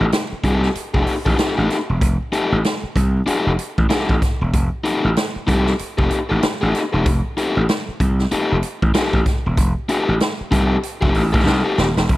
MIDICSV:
0, 0, Header, 1, 5, 480
1, 0, Start_track
1, 0, Tempo, 630252
1, 1532, Time_signature, 4, 2, 24, 8
1, 9272, End_track
2, 0, Start_track
2, 0, Title_t, "Overdriven electric guitar"
2, 0, Program_c, 0, 29
2, 334, Note_on_c, 0, 63, 80
2, 340, Note_on_c, 0, 67, 83
2, 344, Note_on_c, 0, 69, 101
2, 511, Note_off_c, 0, 63, 0
2, 514, Note_off_c, 0, 67, 0
2, 516, Note_off_c, 0, 69, 0
2, 715, Note_on_c, 0, 69, 73
2, 722, Note_on_c, 0, 67, 69
2, 728, Note_on_c, 0, 63, 60
2, 863, Note_off_c, 0, 69, 0
2, 867, Note_off_c, 0, 67, 0
2, 870, Note_off_c, 0, 63, 0
2, 954, Note_on_c, 0, 69, 58
2, 960, Note_on_c, 0, 67, 57
2, 963, Note_on_c, 0, 63, 49
2, 1036, Note_off_c, 0, 63, 0
2, 1044, Note_off_c, 0, 67, 0
2, 1045, Note_on_c, 0, 63, 59
2, 1049, Note_off_c, 0, 69, 0
2, 1053, Note_on_c, 0, 67, 64
2, 1058, Note_on_c, 0, 69, 75
2, 1184, Note_off_c, 0, 69, 0
2, 1188, Note_off_c, 0, 67, 0
2, 1193, Note_off_c, 0, 63, 0
2, 1193, Note_on_c, 0, 69, 70
2, 1197, Note_on_c, 0, 67, 66
2, 1202, Note_on_c, 0, 63, 70
2, 1343, Note_off_c, 0, 69, 0
2, 1345, Note_off_c, 0, 67, 0
2, 1347, Note_off_c, 0, 63, 0
2, 1769, Note_on_c, 0, 63, 86
2, 1773, Note_on_c, 0, 67, 83
2, 1778, Note_on_c, 0, 69, 95
2, 1950, Note_off_c, 0, 63, 0
2, 1952, Note_off_c, 0, 67, 0
2, 1954, Note_off_c, 0, 69, 0
2, 2484, Note_on_c, 0, 63, 92
2, 2493, Note_on_c, 0, 67, 88
2, 2497, Note_on_c, 0, 69, 89
2, 2668, Note_off_c, 0, 63, 0
2, 2672, Note_off_c, 0, 67, 0
2, 2674, Note_off_c, 0, 69, 0
2, 2966, Note_on_c, 0, 63, 76
2, 2969, Note_on_c, 0, 67, 72
2, 2975, Note_on_c, 0, 69, 87
2, 3148, Note_off_c, 0, 63, 0
2, 3150, Note_off_c, 0, 67, 0
2, 3153, Note_off_c, 0, 69, 0
2, 3684, Note_on_c, 0, 63, 98
2, 3690, Note_on_c, 0, 67, 85
2, 3694, Note_on_c, 0, 69, 88
2, 3868, Note_off_c, 0, 63, 0
2, 3871, Note_off_c, 0, 67, 0
2, 3872, Note_off_c, 0, 69, 0
2, 4166, Note_on_c, 0, 63, 85
2, 4173, Note_on_c, 0, 67, 98
2, 4179, Note_on_c, 0, 69, 100
2, 4349, Note_off_c, 0, 63, 0
2, 4352, Note_off_c, 0, 67, 0
2, 4355, Note_off_c, 0, 69, 0
2, 4552, Note_on_c, 0, 69, 77
2, 4557, Note_on_c, 0, 67, 78
2, 4565, Note_on_c, 0, 63, 66
2, 4703, Note_off_c, 0, 69, 0
2, 4706, Note_off_c, 0, 67, 0
2, 4710, Note_off_c, 0, 63, 0
2, 4792, Note_on_c, 0, 69, 62
2, 4798, Note_on_c, 0, 67, 57
2, 4802, Note_on_c, 0, 63, 59
2, 4900, Note_off_c, 0, 69, 0
2, 4904, Note_off_c, 0, 67, 0
2, 4906, Note_off_c, 0, 63, 0
2, 5036, Note_on_c, 0, 69, 72
2, 5042, Note_on_c, 0, 67, 66
2, 5046, Note_on_c, 0, 63, 66
2, 5185, Note_off_c, 0, 69, 0
2, 5188, Note_off_c, 0, 67, 0
2, 5190, Note_off_c, 0, 63, 0
2, 5275, Note_on_c, 0, 69, 65
2, 5279, Note_on_c, 0, 67, 45
2, 5284, Note_on_c, 0, 63, 56
2, 5382, Note_off_c, 0, 69, 0
2, 5384, Note_off_c, 0, 67, 0
2, 5386, Note_off_c, 0, 63, 0
2, 5615, Note_on_c, 0, 63, 95
2, 5620, Note_on_c, 0, 67, 95
2, 5623, Note_on_c, 0, 69, 93
2, 5793, Note_off_c, 0, 63, 0
2, 5796, Note_off_c, 0, 67, 0
2, 5797, Note_off_c, 0, 69, 0
2, 6333, Note_on_c, 0, 63, 96
2, 6339, Note_on_c, 0, 67, 94
2, 6343, Note_on_c, 0, 69, 91
2, 6512, Note_off_c, 0, 63, 0
2, 6515, Note_off_c, 0, 67, 0
2, 6517, Note_off_c, 0, 69, 0
2, 6811, Note_on_c, 0, 63, 83
2, 6815, Note_on_c, 0, 67, 88
2, 6821, Note_on_c, 0, 69, 101
2, 6991, Note_off_c, 0, 63, 0
2, 6993, Note_off_c, 0, 67, 0
2, 6996, Note_off_c, 0, 69, 0
2, 7530, Note_on_c, 0, 63, 89
2, 7536, Note_on_c, 0, 67, 94
2, 7541, Note_on_c, 0, 69, 100
2, 7711, Note_off_c, 0, 63, 0
2, 7714, Note_off_c, 0, 67, 0
2, 7716, Note_off_c, 0, 69, 0
2, 8004, Note_on_c, 0, 63, 77
2, 8010, Note_on_c, 0, 67, 86
2, 8015, Note_on_c, 0, 69, 83
2, 8188, Note_off_c, 0, 63, 0
2, 8191, Note_off_c, 0, 67, 0
2, 8193, Note_off_c, 0, 69, 0
2, 8386, Note_on_c, 0, 69, 72
2, 8393, Note_on_c, 0, 67, 77
2, 8398, Note_on_c, 0, 63, 62
2, 8540, Note_off_c, 0, 69, 0
2, 8544, Note_off_c, 0, 67, 0
2, 8546, Note_off_c, 0, 63, 0
2, 8625, Note_on_c, 0, 69, 66
2, 8632, Note_on_c, 0, 67, 58
2, 8637, Note_on_c, 0, 63, 49
2, 8712, Note_off_c, 0, 63, 0
2, 8720, Note_off_c, 0, 67, 0
2, 8721, Note_on_c, 0, 63, 54
2, 8723, Note_off_c, 0, 69, 0
2, 8729, Note_on_c, 0, 67, 57
2, 8732, Note_on_c, 0, 69, 75
2, 8860, Note_off_c, 0, 69, 0
2, 8865, Note_off_c, 0, 67, 0
2, 8867, Note_off_c, 0, 63, 0
2, 8869, Note_on_c, 0, 69, 76
2, 8874, Note_on_c, 0, 67, 79
2, 8876, Note_on_c, 0, 63, 61
2, 9022, Note_off_c, 0, 69, 0
2, 9024, Note_off_c, 0, 67, 0
2, 9025, Note_off_c, 0, 63, 0
2, 9272, End_track
3, 0, Start_track
3, 0, Title_t, "Slap bass"
3, 0, Program_c, 1, 36
3, 4, Note_on_c, 1, 33, 85
3, 75, Note_off_c, 1, 33, 0
3, 334, Note_on_c, 1, 36, 84
3, 520, Note_off_c, 1, 36, 0
3, 719, Note_on_c, 1, 29, 83
3, 792, Note_off_c, 1, 29, 0
3, 961, Note_on_c, 1, 33, 85
3, 1034, Note_off_c, 1, 33, 0
3, 1204, Note_on_c, 1, 33, 81
3, 1276, Note_off_c, 1, 33, 0
3, 1443, Note_on_c, 1, 28, 92
3, 1535, Note_off_c, 1, 28, 0
3, 1535, Note_on_c, 1, 29, 101
3, 1647, Note_off_c, 1, 29, 0
3, 1921, Note_on_c, 1, 33, 90
3, 1994, Note_off_c, 1, 33, 0
3, 2252, Note_on_c, 1, 36, 88
3, 2440, Note_off_c, 1, 36, 0
3, 2639, Note_on_c, 1, 29, 74
3, 2713, Note_off_c, 1, 29, 0
3, 2880, Note_on_c, 1, 33, 88
3, 2954, Note_off_c, 1, 33, 0
3, 3121, Note_on_c, 1, 33, 85
3, 3195, Note_off_c, 1, 33, 0
3, 3361, Note_on_c, 1, 28, 105
3, 3456, Note_off_c, 1, 28, 0
3, 3456, Note_on_c, 1, 29, 99
3, 3567, Note_off_c, 1, 29, 0
3, 3842, Note_on_c, 1, 33, 99
3, 3915, Note_off_c, 1, 33, 0
3, 4174, Note_on_c, 1, 36, 92
3, 4361, Note_off_c, 1, 36, 0
3, 4560, Note_on_c, 1, 29, 74
3, 4634, Note_off_c, 1, 29, 0
3, 4806, Note_on_c, 1, 33, 81
3, 4878, Note_off_c, 1, 33, 0
3, 5045, Note_on_c, 1, 33, 93
3, 5117, Note_off_c, 1, 33, 0
3, 5282, Note_on_c, 1, 28, 96
3, 5376, Note_off_c, 1, 28, 0
3, 5376, Note_on_c, 1, 29, 100
3, 5488, Note_off_c, 1, 29, 0
3, 5764, Note_on_c, 1, 33, 97
3, 5836, Note_off_c, 1, 33, 0
3, 6095, Note_on_c, 1, 36, 101
3, 6282, Note_off_c, 1, 36, 0
3, 6488, Note_on_c, 1, 29, 79
3, 6559, Note_off_c, 1, 29, 0
3, 6720, Note_on_c, 1, 33, 86
3, 6794, Note_off_c, 1, 33, 0
3, 6959, Note_on_c, 1, 33, 90
3, 7034, Note_off_c, 1, 33, 0
3, 7206, Note_on_c, 1, 28, 99
3, 7294, Note_off_c, 1, 28, 0
3, 7294, Note_on_c, 1, 29, 107
3, 7406, Note_off_c, 1, 29, 0
3, 7681, Note_on_c, 1, 33, 91
3, 7754, Note_off_c, 1, 33, 0
3, 8012, Note_on_c, 1, 36, 91
3, 8200, Note_off_c, 1, 36, 0
3, 8394, Note_on_c, 1, 29, 81
3, 8470, Note_off_c, 1, 29, 0
3, 8495, Note_on_c, 1, 33, 87
3, 8607, Note_off_c, 1, 33, 0
3, 8639, Note_on_c, 1, 33, 95
3, 8714, Note_off_c, 1, 33, 0
3, 8733, Note_on_c, 1, 36, 83
3, 8846, Note_off_c, 1, 36, 0
3, 8972, Note_on_c, 1, 27, 84
3, 9085, Note_off_c, 1, 27, 0
3, 9114, Note_on_c, 1, 28, 82
3, 9191, Note_off_c, 1, 28, 0
3, 9213, Note_on_c, 1, 29, 99
3, 9272, Note_off_c, 1, 29, 0
3, 9272, End_track
4, 0, Start_track
4, 0, Title_t, "Muted slap bass strokes"
4, 248, Note_on_c, 9, 29, 48
4, 324, Note_off_c, 9, 29, 0
4, 576, Note_on_c, 9, 29, 40
4, 653, Note_off_c, 9, 29, 0
4, 2159, Note_on_c, 9, 29, 52
4, 2235, Note_off_c, 9, 29, 0
4, 2496, Note_on_c, 9, 29, 41
4, 2572, Note_off_c, 9, 29, 0
4, 2976, Note_on_c, 9, 29, 46
4, 3052, Note_off_c, 9, 29, 0
4, 4081, Note_on_c, 9, 29, 49
4, 4158, Note_off_c, 9, 29, 0
4, 4419, Note_on_c, 9, 29, 47
4, 4495, Note_off_c, 9, 29, 0
4, 4906, Note_on_c, 9, 29, 53
4, 4982, Note_off_c, 9, 29, 0
4, 6005, Note_on_c, 9, 29, 47
4, 6081, Note_off_c, 9, 29, 0
4, 6345, Note_on_c, 9, 29, 45
4, 6421, Note_off_c, 9, 29, 0
4, 7925, Note_on_c, 9, 29, 54
4, 8002, Note_off_c, 9, 29, 0
4, 9272, End_track
5, 0, Start_track
5, 0, Title_t, "Drums"
5, 94, Note_on_c, 9, 42, 71
5, 99, Note_on_c, 9, 38, 95
5, 171, Note_off_c, 9, 42, 0
5, 175, Note_off_c, 9, 38, 0
5, 332, Note_on_c, 9, 36, 83
5, 338, Note_on_c, 9, 42, 72
5, 408, Note_off_c, 9, 36, 0
5, 415, Note_off_c, 9, 42, 0
5, 479, Note_on_c, 9, 38, 35
5, 555, Note_off_c, 9, 38, 0
5, 574, Note_on_c, 9, 42, 83
5, 651, Note_off_c, 9, 42, 0
5, 717, Note_on_c, 9, 36, 96
5, 793, Note_off_c, 9, 36, 0
5, 812, Note_on_c, 9, 46, 67
5, 888, Note_off_c, 9, 46, 0
5, 959, Note_on_c, 9, 36, 80
5, 1036, Note_off_c, 9, 36, 0
5, 1056, Note_on_c, 9, 42, 88
5, 1059, Note_on_c, 9, 38, 106
5, 1132, Note_off_c, 9, 42, 0
5, 1136, Note_off_c, 9, 38, 0
5, 1297, Note_on_c, 9, 42, 63
5, 1302, Note_on_c, 9, 38, 31
5, 1373, Note_off_c, 9, 42, 0
5, 1378, Note_off_c, 9, 38, 0
5, 1534, Note_on_c, 9, 36, 106
5, 1536, Note_on_c, 9, 42, 95
5, 1610, Note_off_c, 9, 36, 0
5, 1612, Note_off_c, 9, 42, 0
5, 1776, Note_on_c, 9, 42, 80
5, 1852, Note_off_c, 9, 42, 0
5, 2014, Note_on_c, 9, 42, 61
5, 2018, Note_on_c, 9, 38, 90
5, 2090, Note_off_c, 9, 42, 0
5, 2095, Note_off_c, 9, 38, 0
5, 2251, Note_on_c, 9, 36, 87
5, 2257, Note_on_c, 9, 42, 77
5, 2327, Note_off_c, 9, 36, 0
5, 2333, Note_off_c, 9, 42, 0
5, 2493, Note_on_c, 9, 42, 80
5, 2569, Note_off_c, 9, 42, 0
5, 2732, Note_on_c, 9, 42, 78
5, 2808, Note_off_c, 9, 42, 0
5, 2879, Note_on_c, 9, 36, 87
5, 2955, Note_off_c, 9, 36, 0
5, 2972, Note_on_c, 9, 42, 78
5, 2975, Note_on_c, 9, 38, 111
5, 3048, Note_off_c, 9, 42, 0
5, 3051, Note_off_c, 9, 38, 0
5, 3117, Note_on_c, 9, 36, 91
5, 3194, Note_off_c, 9, 36, 0
5, 3214, Note_on_c, 9, 36, 98
5, 3216, Note_on_c, 9, 42, 67
5, 3221, Note_on_c, 9, 38, 31
5, 3290, Note_off_c, 9, 36, 0
5, 3292, Note_off_c, 9, 42, 0
5, 3298, Note_off_c, 9, 38, 0
5, 3453, Note_on_c, 9, 42, 88
5, 3454, Note_on_c, 9, 36, 102
5, 3530, Note_off_c, 9, 36, 0
5, 3530, Note_off_c, 9, 42, 0
5, 3696, Note_on_c, 9, 42, 75
5, 3772, Note_off_c, 9, 42, 0
5, 3934, Note_on_c, 9, 42, 74
5, 3938, Note_on_c, 9, 38, 98
5, 4010, Note_off_c, 9, 42, 0
5, 4014, Note_off_c, 9, 38, 0
5, 4173, Note_on_c, 9, 36, 87
5, 4178, Note_on_c, 9, 42, 72
5, 4249, Note_off_c, 9, 36, 0
5, 4254, Note_off_c, 9, 42, 0
5, 4316, Note_on_c, 9, 38, 40
5, 4392, Note_off_c, 9, 38, 0
5, 4412, Note_on_c, 9, 42, 79
5, 4488, Note_off_c, 9, 42, 0
5, 4558, Note_on_c, 9, 36, 96
5, 4635, Note_off_c, 9, 36, 0
5, 4650, Note_on_c, 9, 42, 80
5, 4726, Note_off_c, 9, 42, 0
5, 4894, Note_on_c, 9, 42, 89
5, 4898, Note_on_c, 9, 38, 117
5, 4970, Note_off_c, 9, 42, 0
5, 4974, Note_off_c, 9, 38, 0
5, 5138, Note_on_c, 9, 42, 72
5, 5143, Note_on_c, 9, 38, 32
5, 5214, Note_off_c, 9, 42, 0
5, 5219, Note_off_c, 9, 38, 0
5, 5375, Note_on_c, 9, 42, 93
5, 5376, Note_on_c, 9, 36, 115
5, 5451, Note_off_c, 9, 42, 0
5, 5452, Note_off_c, 9, 36, 0
5, 5618, Note_on_c, 9, 42, 74
5, 5694, Note_off_c, 9, 42, 0
5, 5855, Note_on_c, 9, 42, 69
5, 5860, Note_on_c, 9, 38, 98
5, 5932, Note_off_c, 9, 42, 0
5, 5936, Note_off_c, 9, 38, 0
5, 6093, Note_on_c, 9, 36, 99
5, 6097, Note_on_c, 9, 42, 69
5, 6170, Note_off_c, 9, 36, 0
5, 6173, Note_off_c, 9, 42, 0
5, 6236, Note_on_c, 9, 38, 35
5, 6312, Note_off_c, 9, 38, 0
5, 6332, Note_on_c, 9, 42, 78
5, 6408, Note_off_c, 9, 42, 0
5, 6569, Note_on_c, 9, 42, 85
5, 6646, Note_off_c, 9, 42, 0
5, 6720, Note_on_c, 9, 36, 90
5, 6796, Note_off_c, 9, 36, 0
5, 6811, Note_on_c, 9, 42, 85
5, 6815, Note_on_c, 9, 38, 119
5, 6888, Note_off_c, 9, 42, 0
5, 6891, Note_off_c, 9, 38, 0
5, 6956, Note_on_c, 9, 36, 89
5, 7032, Note_off_c, 9, 36, 0
5, 7050, Note_on_c, 9, 42, 58
5, 7053, Note_on_c, 9, 36, 102
5, 7055, Note_on_c, 9, 38, 33
5, 7126, Note_off_c, 9, 42, 0
5, 7129, Note_off_c, 9, 36, 0
5, 7132, Note_off_c, 9, 38, 0
5, 7291, Note_on_c, 9, 42, 85
5, 7292, Note_on_c, 9, 36, 102
5, 7367, Note_off_c, 9, 42, 0
5, 7368, Note_off_c, 9, 36, 0
5, 7531, Note_on_c, 9, 42, 78
5, 7607, Note_off_c, 9, 42, 0
5, 7771, Note_on_c, 9, 42, 69
5, 7775, Note_on_c, 9, 38, 94
5, 7847, Note_off_c, 9, 42, 0
5, 7851, Note_off_c, 9, 38, 0
5, 8010, Note_on_c, 9, 36, 96
5, 8018, Note_on_c, 9, 42, 81
5, 8086, Note_off_c, 9, 36, 0
5, 8094, Note_off_c, 9, 42, 0
5, 8251, Note_on_c, 9, 42, 86
5, 8327, Note_off_c, 9, 42, 0
5, 8395, Note_on_c, 9, 36, 99
5, 8471, Note_off_c, 9, 36, 0
5, 8488, Note_on_c, 9, 46, 74
5, 8565, Note_off_c, 9, 46, 0
5, 8636, Note_on_c, 9, 36, 83
5, 8713, Note_off_c, 9, 36, 0
5, 8733, Note_on_c, 9, 38, 58
5, 8810, Note_off_c, 9, 38, 0
5, 8973, Note_on_c, 9, 38, 84
5, 9049, Note_off_c, 9, 38, 0
5, 9117, Note_on_c, 9, 38, 79
5, 9193, Note_off_c, 9, 38, 0
5, 9207, Note_on_c, 9, 42, 85
5, 9210, Note_on_c, 9, 36, 94
5, 9272, Note_off_c, 9, 36, 0
5, 9272, Note_off_c, 9, 42, 0
5, 9272, End_track
0, 0, End_of_file